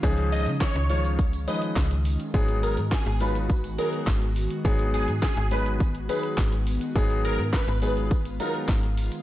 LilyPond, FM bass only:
\new Staff \with { instrumentName = "FM bass" } { \clef bass \time 4/4 \key aes \dorian \tempo 4 = 104 des,8. des8 des,4.~ des,16 des,4 | aes,,8. aes,8 aes,,4.~ aes,,16 aes,,4 | aes,,8. aes,8 aes,,4.~ aes,,16 aes,,4 | aes,,8. aes,8 aes,,4.~ aes,,16 aes,,4 | }